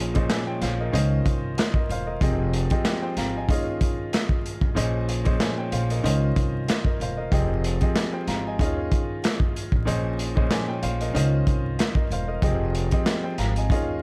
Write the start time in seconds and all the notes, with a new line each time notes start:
Already playing: A#1 A#2 F3 C#4 G#4 C5 D#5
0.14 A#2 F3 C#4 G#4 C5 D#5, kick, closed hi-hat
0.30 G#5, snare, clap, closed hi-hat
0.47 C#5 G5
0.61 A#1 C5 F5, snare, closed hi-hat
0.80 A#4 D#5
0.92 C#2 D#3 C#4 F4 C5 D#5, closed hi-hat
1.26 C2, kick, closed hi-hat
1.58 snare, clap, closed hi-hat
1.74 A#4 D#5, kick
1.89 E1 C5 F5, closed hi-hat
2.06 A#4 D#5
2.21 F1 F3 C4 G4 G#4 D#5, kick, closed hi-hat
2.53 closed hi-hat
2.70 F3 C4 G4 G#4 D#5, kick, closed hi-hat
2.85 snare, clap, closed hi-hat
3.02 C5 G5
3.17 G#1 F5 A#5, snare, closed hi-hat
3.36 D#5 G#5
3.49 D#2 D#3 C#4 F4 G#4 D#5, kick, closed hi-hat
3.81 kick, closed hi-hat
4.13 snare, clap, closed hi-hat
4.29 kick
4.46 closed hi-hat
4.61 A1, kick
4.75 A#1 A#2 F3 C#4 G#4 C5 D#5, closed hi-hat
5.09 closed hi-hat
5.24 A#2 F3 C#4 G#4 C5 D#5, kick, closed hi-hat
5.40 D#5 G#5, snare, clap, closed hi-hat
5.58 C#5 G5
5.72 A#1 C5 F5, closed hi-hat
5.90 A#4 D#5, closed hi-hat
6.03 C#2 D#3 C#4 F4 C5 D#5, closed hi-hat
6.36 C2, kick, closed hi-hat
6.69 snare, clap, closed hi-hat
6.85 A#4 D#5, kick
7.00 E1 C5 F5, closed hi-hat
7.17 A#4 D#5
7.31 F1 F3 C4 G4 G#4 D#5, kick, closed hi-hat
7.64 closed hi-hat
7.81 F3 C4 G4 G#4 D#5, kick, closed hi-hat
7.96 snare, clap, closed hi-hat
8.13 C5 G5
8.28 G#1 F5 A#5, snare, closed hi-hat
8.47 D#5 G#5
8.59 D#2 D#3 C#4 F4 G#4 D#5, kick, closed hi-hat
8.92 kick, closed hi-hat
9.24 snare, clap, closed hi-hat
9.40 kick
9.56 closed hi-hat
9.72 A1, kick
9.85 A#1 A#2 F3 C#4 G#4 C5 D#5, closed hi-hat
10.19 closed hi-hat
10.35 A#2 F3 C#4 G#4 C5 D#5, kick
10.51 D#5 G#5, snare, clap, closed hi-hat
10.68 C#5 G5
10.83 A#1 C5 F5, closed hi-hat
11.01 A#4 D#5, closed hi-hat
11.13 C#2 D#3 C#4 F4 C5 D#5, closed hi-hat
11.47 kick, closed hi-hat
11.79 snare, clap, closed hi-hat
11.95 A#4 D#5, kick
12.10 E1 C5 F5, closed hi-hat
12.28 A#4 D#5
12.42 F1 F3 C4 G4 G#4 D#5, kick, closed hi-hat
12.75 closed hi-hat
12.91 F3 C4 G4 G#4 D#5, kick, closed hi-hat
13.06 snare, clap, closed hi-hat
13.23 C5 G5
13.38 G#1 F5 A#5, snare, closed hi-hat
13.56 D#5 G#5, closed hi-hat
13.70 D#2 D#3 C#4 F4 G#4 D#5, kick, closed hi-hat